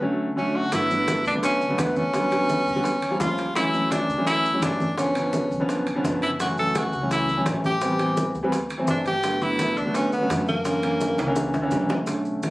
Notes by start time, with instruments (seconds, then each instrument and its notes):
0.01 grand piano D3 F#3 A3 C#4
0.36 grand piano D3 F#3 A3 C#4, tenor saxophone C#4
0.56 tenor saxophone F#4
0.72 upright bass G1, grand piano D3 F#3 A3 B3, tenor saxophone E4, high bongo, high conga, high timbale, maracas
0.90 grand piano D3 F#3 A3 B3, high conga, maracas
1.08 high bongo, high conga, high timbale, low timbale, maracas
1.25 upright bass D2, tenor saxophone D4, high bongo, high conga, maracas
1.34 grand piano D3 F#3 A3 B3
1.43 tenor saxophone C#4, high bongo, high conga, high timbale, maracas
1.61 high bongo, high conga, maracas
1.68 grand piano D3 F#3 A3 B3
1.78 upright bass E2, tenor saxophone B3, high bongo, low bongo, high conga, high timbale, low timbale, maracas
1.96 tenor saxophone C#4, high bongo, high conga, maracas
2.13 grand piano D3 F#3 G3 B3, high bongo, high conga, high timbale, maracas
2.31 grand piano D3 F#3 G3 B3, high bongo, high conga, high timbale, maracas
2.49 high bongo, high conga, low timbale, maracas
2.66 upright bass D#2, high bongo, high conga, maracas
2.75 grand piano D3 F#3 G3 B3
2.84 high bongo, high conga, high timbale, maracas
3.02 high conga, high timbale, maracas
3.10 grand piano F3 G3 A#3 C#4
3.20 upright bass D2, tenor saxophone F4, high bongo, low bongo, high conga, low timbale, maracas
3.38 high bongo, high timbale, maracas
3.55 grand piano E3 F#3 A3 C#4, tenor saxophone E4, high bongo, high conga, high timbale, maracas
3.73 grand piano E3 F#3 A3 C#4, high conga, maracas
3.91 tenor saxophone D4, high bongo, high conga, high timbale, low timbale, maracas
4.09 upright bass D2, high bongo, high conga, maracas
4.17 grand piano E3 F#3 A3 C#4
4.27 tenor saxophone E4, high bongo, high conga, high timbale, maracas
4.44 high bongo, high conga, maracas
4.53 grand piano E3 F#3 A3 C#4
4.62 upright bass G1, tenor saxophone D4, high bongo, low bongo, high conga, high timbale, low timbale, maracas
4.80 high bongo, high conga, maracas
4.97 grand piano D3 F3 B3 C#4, tenor saxophone C#4, high bongo, high timbale, maracas
5.15 grand piano D3 F3 B3 C#4, high bongo, high conga, high timbale, maracas
5.33 high bongo, high conga, low timbale, maracas
5.51 upright bass B1, high bongo, high conga, maracas
5.60 grand piano D3 F3 B3 C#4
5.69 high bongo, high conga, high timbale, maracas
5.87 high conga, high timbale, maracas
5.95 grand piano D3 F3 B3 C#4
6.04 upright bass F#1, high bongo, low bongo, high conga, low timbale, maracas
6.22 tenor saxophone E4, high bongo, high timbale, maracas
6.39 grand piano E3 F#3 A3 C#4, tenor saxophone F#4, high bongo, high conga, high timbale, maracas
6.57 grand piano E3 F#3 A3 C#4, tenor saxophone A4, high conga, maracas
6.75 tenor saxophone F#4, high bongo, high conga, high timbale, low timbale, maracas
6.93 upright bass C#2, high bongo, high conga, maracas
7.01 grand piano E3 F#3 A3 C#4
7.11 tenor saxophone E4, high bongo, high conga, high timbale, maracas
7.28 high bongo, high conga, maracas
7.37 grand piano E3 F#3 A3 C#4
7.46 upright bass A1, high bongo, low bongo, high conga, high timbale, low timbale, maracas
7.64 tenor saxophone G4, high bongo, high conga, maracas
7.81 grand piano E3 G3 B3 C4, high bongo, high conga, high timbale, maracas
7.98 grand piano E3 G3 B3 C4, high bongo, high conga, high timbale, maracas
8.17 high bongo, high conga, low timbale, maracas
8.34 upright bass D2, high bongo, high conga, maracas
8.43 grand piano E3 G3 B3 C4
8.52 high bongo, high conga, high timbale, maracas
8.70 high conga, high timbale, maracas
8.78 grand piano E3 F#3 A3 C4
8.87 upright bass G1, tenor saxophone D4, high bongo, low bongo, high conga, low timbale, maracas
9.06 tenor saxophone G4, high bongo, high conga, high timbale, maracas
9.23 grand piano D3 F#3 A3 B3, high bongo, high timbale, maracas
9.41 grand piano D3 F#3 A3 B3, tenor saxophone E4, high conga, maracas
9.59 high bongo, high conga, high timbale, low timbale, maracas
9.77 upright bass D2, tenor saxophone D4, high bongo, high conga, maracas
9.85 grand piano D3 F#3 A3 B3
9.94 tenor saxophone C#4, high bongo, high conga, high timbale, maracas
10.12 tenor saxophone B3, high bongo, high conga, maracas
10.20 grand piano D3 F#3 A3 C#4
10.30 upright bass F#2, high bongo, low bongo, high conga, high timbale, low timbale, maracas
10.47 tenor saxophone A#3, high bongo, high conga, maracas
10.64 grand piano D3 E3 A#3 C#4, high bongo, high conga, high timbale, maracas
10.83 grand piano D3 E3 A#3 C#4, high bongo, high conga, high timbale, maracas
11.01 high bongo, high conga, low timbale, maracas
11.18 upright bass C#2, low bongo, high conga, high timbale, maracas
11.27 grand piano D3 E3 A#3 C#4
11.36 high bongo, high conga, maracas
11.54 low bongo, high conga, maracas
11.62 grand piano D3 E3 A#3 C#4
11.71 upright bass B1, low bongo, high conga, low timbale, maracas
11.89 low bongo, low timbale, maracas
12.06 grand piano D3 A3 C#4, high bongo, high conga, high timbale, maracas
12.25 high conga, maracas
12.43 high bongo, high conga, high timbale, low timbale, maracas